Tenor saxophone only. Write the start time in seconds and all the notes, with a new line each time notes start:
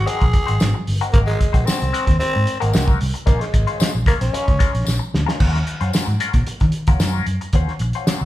0.06 G#4
1.13 A#3
1.26 G#3
1.66 C4
2.19 C4
2.60 A#3
3.26 A#3
3.41 G#3
3.80 G#3
4.07 A#3
4.22 C#4